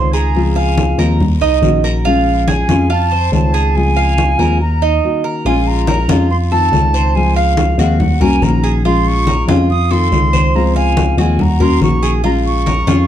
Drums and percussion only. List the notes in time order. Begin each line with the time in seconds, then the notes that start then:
0.13 short guiro
0.35 high conga, long guiro
0.57 high conga
0.78 high conga, short guiro
0.99 high conga, short guiro
1.20 high conga, low conga, long guiro
1.42 high conga
1.63 high conga, short guiro
1.84 high conga, short guiro
2.05 high conga, long guiro
2.27 high conga
2.48 high conga, short guiro
2.69 high conga, short guiro
2.90 high conga, long guiro
3.12 high conga
3.33 high conga, short guiro
3.54 short guiro
3.75 high conga, long guiro
3.97 high conga
4.18 high conga, short guiro
4.39 high conga, short guiro
5.46 high conga, long guiro
5.67 high conga
5.87 high conga, short guiro
6.09 high conga, short guiro
6.31 high conga, long guiro
6.52 high conga
6.73 high conga, short guiro
6.94 short guiro
7.15 high conga, long guiro
7.37 high conga
7.57 high conga, short guiro
7.79 high conga, short guiro
8.00 high conga, low conga, long guiro
8.21 high conga, low conga
8.42 high conga, short guiro
8.64 high conga, short guiro
8.85 high conga, long guiro
9.06 high conga
9.27 high conga, short guiro
9.49 high conga, short guiro
9.70 high conga, long guiro
9.91 high conga
10.12 high conga, short guiro
10.33 high conga, short guiro
10.54 high conga, long guiro
10.76 high conga
10.97 high conga, short guiro
11.18 high conga, short guiro
11.39 high conga, low conga, long guiro
11.61 high conga, low conga
11.82 high conga, short guiro
12.03 high conga, short guiro
12.24 high conga, long guiro
12.45 high conga
12.67 high conga, short guiro
12.88 high conga, short guiro